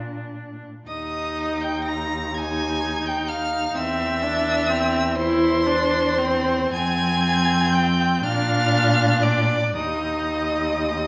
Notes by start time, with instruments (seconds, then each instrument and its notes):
Already playing: cello A#2, viola D4
0.87 cello D#2, viola D#4, violin D#5 D#6
1.61 violin G5 G6
1.84 violin A#5 A#6
2.34 viola D#4, violin G#5 G#6
3.06 violin G5 G6
3.28 violin F5 F6
3.75 cello E2, viola C4, violin E5 E6
4.23 viola D4
4.70 viola C4
5.16 viola E4, violin C5 C6
5.66 viola D4
6.18 viola C4
6.73 cello F2, viola C4, violin G#5 G#6
7.73 violin G5 G6
8.22 cello A#2, viola D4, violin F5 F6
9.23 violin D5 D6
9.75 cello D#2, viola D#4, violin D#5 D#6